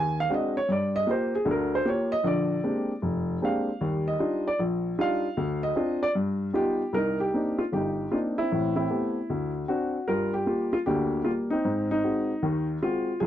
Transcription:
0.00 0.25 D#2 medium
0.00 0.18 G#5 loud
0.20 0.31 F5 medium
0.30 0.57 G#3 medium
0.30 0.57 C4 soft
0.30 0.57 D4 soft
0.30 0.57 F#4 medium
0.34 0.57 D#5 medium
0.57 0.69 C#5 medium
0.68 1.02 G2 medium
0.68 0.95 D5 medium
0.96 1.08 D#5 loud
1.07 1.34 A#3 medium
1.07 1.34 F4 soft
1.07 1.35 G4 medium
1.11 1.34 C5 medium
1.35 1.47 G#4 medium
1.45 1.80 D2 medium
1.45 1.80 D3 medium
1.51 1.74 A#4 medium
1.75 1.87 C5 medium
1.85 2.12 A#3 medium
1.85 2.12 F4 medium
1.85 2.13 G4 medium
1.85 2.12 C#5 medium
2.12 2.25 D#5 loud
2.24 2.58 A#1 medium
2.24 2.58 D3 medium
2.24 3.00 D5 medium
2.64 2.91 G#3 medium
2.64 2.91 A#3 soft
2.64 2.91 C4 medium
2.64 2.91 D4 soft
2.64 2.91 G4 medium
3.02 3.36 F1 medium
3.42 3.69 G#3 medium
3.42 3.69 A#3 medium
3.42 3.69 C4 medium
3.42 3.69 D4 medium
3.42 3.69 G4 medium
3.42 4.04 F5 medium
3.81 4.15 D#2 medium
3.81 4.15 G3 medium
4.08 4.43 D#5 medium
4.19 4.46 G3 medium
4.19 4.46 D4 soft
4.19 4.47 D#4 medium
4.19 4.47 F4 medium
4.48 4.59 D5 medium
4.59 4.93 A#1 medium
4.98 5.25 G3 medium
4.98 5.25 D4 medium
4.98 5.25 D#4 medium
4.98 5.25 F4 medium
4.98 5.60 F5 medium
5.37 5.71 D2 medium
5.63 5.99 D#5 medium
5.75 6.03 C4 medium
5.75 6.03 D4 medium
5.75 6.03 F4 medium
6.03 6.10 D5 loud
6.15 6.49 G2 medium
6.53 6.81 G3 medium
6.53 6.81 B3 medium
6.53 6.81 D#4 medium
6.53 6.81 F4 medium
6.53 6.95 G4 medium
6.93 7.27 C2 medium
6.93 7.33 D#4 medium
6.93 7.18 A#4 medium
7.20 7.60 G4 medium
7.34 7.60 A#3 soft
7.34 7.61 C4 soft
7.34 7.61 D4 soft
7.34 7.61 D#4 medium
7.59 7.64 F4 medium
7.72 8.06 G1 medium
7.72 8.12 D#4 medium
7.72 8.13 G4 medium
8.12 8.39 A#3 soft
8.12 8.39 C4 soft
8.12 8.39 D4 soft
8.12 8.39 D#4 medium
8.12 8.17 F4 medium
8.38 8.77 C4 medium
8.38 8.75 E4 medium
8.52 8.85 A1 medium
8.52 8.85 A2 medium
8.76 8.89 C4 medium
8.76 9.51 E4 medium
8.90 9.17 A3 soft
8.90 9.17 B3 soft
8.90 9.17 C4 soft
8.90 9.17 G4 medium
9.30 9.63 D2 medium
9.68 9.96 C4 medium
9.68 9.96 D4 soft
9.68 10.09 F#4 medium
10.08 10.42 G2 medium
10.08 10.42 G3 medium
10.08 10.46 F4 medium
10.08 10.32 A#4 medium
10.34 10.74 G4 medium
10.46 10.74 G3 soft
10.46 10.74 A#3 soft
10.46 10.71 F4 medium
10.73 10.78 F4 medium
10.86 11.21 D2 medium
10.86 11.21 D3 medium
10.86 11.24 A#3 medium
10.86 11.27 G4 medium
11.25 11.53 G3 soft
11.25 11.53 A#3 soft
11.25 11.30 F4 medium
11.50 11.63 C4 medium
11.50 11.87 D#4 medium
11.64 11.99 G#2 medium
11.64 11.91 C4 medium
11.91 12.03 C4 medium
11.91 12.65 D#4 medium
12.04 12.31 G#3 soft
12.04 12.31 C4 soft
12.04 12.31 F#4 medium
12.43 12.77 D#2 medium
12.43 12.77 D#3 medium
12.83 13.10 G#3 medium
12.83 13.10 C4 soft
12.83 13.19 F4 medium
12.83 13.10 F#4 medium
13.20 13.27 C#2 medium
13.20 13.27 F3 medium
13.20 13.27 F4 medium
13.20 13.27 G#4 medium

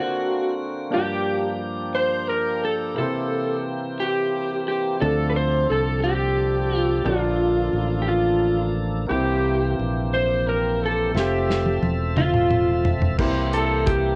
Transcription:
0.00 0.88 D3 soft
0.00 0.91 D3 soft
0.00 0.89 A#3 soft
0.00 4.96 A#3 soft
0.00 0.90 C4 soft
0.00 0.89 D4 soft
0.00 0.54 F#4 medium
0.00 0.60 F#4 medium
0.00 0.91 F#4 medium
0.00 0.95 F#4 soft
0.00 0.93 A4 soft
0.00 0.93 C5 medium
0.90 1.91 G2 soft
0.90 2.95 F3 soft
0.90 2.92 A#3 soft
0.90 2.92 D4 soft
0.90 2.94 D4 soft
0.90 2.93 F4 soft
0.90 4.97 G4 medium
0.90 1.57 G4 medium
0.90 2.93 G4 soft
0.95 1.00 C#5 soft
1.01 2.97 D5 medium
1.95 2.30 C5 medium
2.28 2.66 A#4 medium
2.28 2.61 A#4 medium
2.64 2.97 A4 medium
2.64 2.74 A4 medium
2.94 3.95 C3 soft
2.94 4.96 A#3 soft
2.94 4.96 C4 soft
2.94 4.97 E4 soft
2.94 4.98 G4 soft
2.94 3.61 A4 medium
2.99 5.00 E3 soft
2.99 7.02 C4 soft
2.99 3.62 A4 medium
2.99 4.98 C5 medium
4.00 4.67 G4 medium
4.00 4.64 G4 medium
4.68 5.01 G4 medium
4.68 5.04 G4 medium
5.00 5.65 D2 medium
5.00 6.00 D3 soft
5.00 9.05 F3 soft
5.00 7.01 C4 soft
5.00 7.03 D4 soft
5.00 7.01 D4 soft
5.00 7.02 F4 soft
5.00 9.05 A4 soft
5.00 5.26 A4 medium
5.00 5.39 A4 medium
5.00 7.03 A4 soft
5.05 7.03 D5 medium
5.30 5.36 B4 medium
5.36 5.71 C5 medium
5.36 5.69 C5 medium
5.70 7.02 C2 medium
5.70 6.06 A4 medium
5.70 6.03 A4 medium
6.04 6.77 G4 medium
6.04 7.08 G4 medium
6.77 7.05 F4 medium
7.04 7.69 A#1 medium
7.04 8.04 D3 soft
7.04 9.05 A#3 soft
7.04 11.11 A#3 soft
7.04 9.06 D4 soft
7.04 9.08 D4 soft
7.04 8.03 F4 medium
7.04 9.06 F4 soft
7.04 8.08 F4 medium
7.04 9.07 A4 soft
7.09 7.14 C#5 soft
7.16 9.11 D5 medium
7.73 9.05 A1 medium
8.02 8.08 G4 soft
8.08 8.72 F4 medium
9.07 9.74 C2 medium
9.07 10.08 C3 medium
9.07 11.12 E3 soft
9.07 11.09 A#3 soft
9.07 11.09 C4 soft
9.07 11.12 C4 soft
9.07 11.10 E4 soft
9.07 9.74 G4 medium
9.07 11.12 G4 medium
9.07 11.11 G4 soft
9.07 9.74 G4 medium
9.12 11.11 C5 medium
9.79 11.11 A#1 medium
10.14 10.48 C5 medium
10.47 10.84 A#4 medium
10.47 10.79 A#4 medium
10.83 11.15 A4 medium
10.83 11.18 A4 medium
11.11 11.78 F1 medium
11.11 13.13 A3 soft
11.11 13.14 C4 soft
11.11 13.15 F4 soft
11.11 13.15 E5 soft
11.15 13.17 F3 soft
11.15 13.17 C4 soft
11.15 11.80 G4 medium
11.15 13.17 A4 medium
11.15 13.16 C5 medium
11.15 13.17 E5 soft
11.15 snare soft
11.20 11.81 G4 medium
11.50 snare soft
11.66 high tom soft
11.82 13.14 E1 medium
11.82 high tom medium
12.17 12.90 F4 medium
12.17 mid tom medium
12.34 mid tom medium
12.51 mid tom medium
12.85 floor tom medium
13.02 floor tom medium
13.18 14.15 C2 medium
13.18 14.15 C3 medium
13.18 14.15 E3 medium
13.18 14.15 A#3 medium
13.18 14.15 A#3 soft
13.18 14.15 C4 medium
13.18 14.15 C4 soft
13.18 14.15 E4 medium
13.18 14.15 G4 medium
13.18 14.15 C5 medium
13.18 kick medium
13.18 crash medium
13.53 13.88 A4 medium
13.53 closed hi-hat soft
13.57 13.92 A4 medium
13.86 14.15 G4 medium
13.86 kick medium
13.86 closed hi-hat soft
13.91 14.15 G4 medium

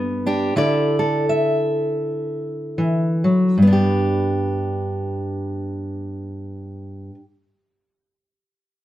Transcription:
0.00 0.55 G2 medium
0.00 0.52 B3 medium
0.00 0.26 D4 medium
0.00 0.26 A4 medium
0.26 0.57 D4 medium
0.26 0.56 G4 medium
0.56 3.53 D3 medium
0.56 3.53 E4 medium
0.56 0.98 A4 medium
0.56 1.29 D5 medium
0.99 3.53 A4 medium
1.29 3.53 E5 medium
2.78 3.23 E3 medium
3.24 3.57 F#3 medium
3.58 7.09 G2 medium
3.62 7.14 B3 medium
3.67 7.19 D4 medium
3.73 7.24 G4 soft

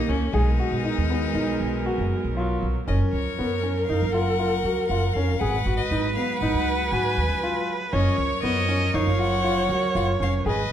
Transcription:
0.00 0.31 D#3 medium
0.00 0.30 A#3 loud
0.00 0.31 C#4 medium
0.00 0.11 D#4 medium
0.00 0.31 G4 medium
0.08 0.32 C#2 medium
0.08 0.22 C#4 medium
0.08 0.34 C#4 medium
0.33 0.57 B1 medium
0.33 2.84 F#3 medium
0.33 2.33 G#3 medium
0.33 2.85 B3 medium
0.33 2.36 D#4 medium
0.33 0.48 G#4 medium
0.33 2.85 A#4 medium
0.59 0.73 F#4 medium
0.71 0.83 B2 medium
0.85 0.98 D#4 medium
0.98 1.33 D#2 medium
1.10 1.24 B3 medium
1.34 1.58 B1 medium
1.34 1.62 D#4 medium
1.61 1.84 B1 medium
1.86 2.13 F#4 medium
1.98 2.10 F#1 medium
2.24 2.60 B1 medium
2.36 2.84 F#3 medium
2.36 2.64 F4 medium
2.62 2.74 B1 medium
2.88 2.99 F#1 medium
2.88 5.38 F3 medium
2.88 5.38 F#3 medium
2.88 3.15 C#4 medium
2.88 5.42 A#4 medium
2.88 5.39 A#4 medium
2.88 2.99 D#5 medium
3.12 3.25 C#2 medium
3.12 3.84 C#5 medium
3.39 3.86 F#2 medium
3.39 3.52 B3 medium
3.63 3.77 C#4 medium
3.86 4.00 F#2 medium
3.86 4.03 D#4 medium
3.86 4.14 F5 medium
4.02 4.61 F#1 medium
4.12 4.28 F4 medium
4.12 4.87 F#5 medium
4.39 4.53 F4 medium
4.64 4.76 C#2 medium
4.64 4.79 F#4 medium
4.87 5.13 F#1 medium
4.87 5.04 F4 medium
4.87 5.15 F#5 medium
5.13 5.39 F1 medium
5.13 5.30 C#4 medium
5.13 5.40 F5 medium
5.39 5.64 G#1 medium
5.39 5.54 G#4 medium
5.39 7.94 B4 loud
5.39 7.92 B4 medium
5.39 5.76 F#5 medium
5.43 7.92 F#3 medium
5.43 7.92 G#3 medium
5.66 5.78 G#1 medium
5.66 5.80 F#4 medium
5.77 6.13 D#5 medium
5.91 6.15 G#1 medium
5.91 6.05 D#4 medium
6.15 6.30 B3 medium
6.15 6.38 F5 medium
6.38 6.53 G#1 medium
6.38 6.69 D#4 medium
6.38 6.92 F#5 medium
6.54 6.90 C#2 medium
6.91 7.16 G#2 medium
6.91 7.20 F#4 medium
6.91 7.68 G#5 medium
7.17 7.29 D#2 medium
7.29 7.54 C#2 medium
7.43 7.70 F4 medium
7.92 8.05 F#1 medium
7.92 10.44 F3 medium
7.92 10.44 F#3 medium
7.92 8.20 C#4 medium
7.92 10.44 A#4 medium
7.92 8.42 C#5 loud
7.92 8.18 D#5 medium
8.17 8.30 C#2 medium
8.17 8.96 C#5 medium
8.43 8.91 F#2 medium
8.43 8.57 B3 medium
8.43 8.96 D#5 loud
8.69 8.82 C#4 medium
8.94 9.06 F#2 medium
8.94 9.08 D#4 medium
8.94 10.46 C#5 loud
8.94 9.20 F5 medium
9.07 9.66 F#1 medium
9.19 9.33 F4 medium
9.19 9.95 F#5 loud
9.44 9.58 F4 medium
9.69 9.82 C#2 medium
9.69 9.84 F#4 medium
9.95 10.19 F#1 medium
9.95 10.09 F4 medium
9.95 10.07 F#5 medium
10.20 10.44 F1 medium
10.20 10.34 C#4 medium
10.20 10.34 F5 medium
10.46 10.70 G#1 medium
10.46 10.72 F#3 medium
10.46 10.72 G#3 medium
10.46 10.60 G#4 medium
10.46 10.72 B4 medium
10.46 10.72 B4 loud
10.46 10.72 D#5 medium

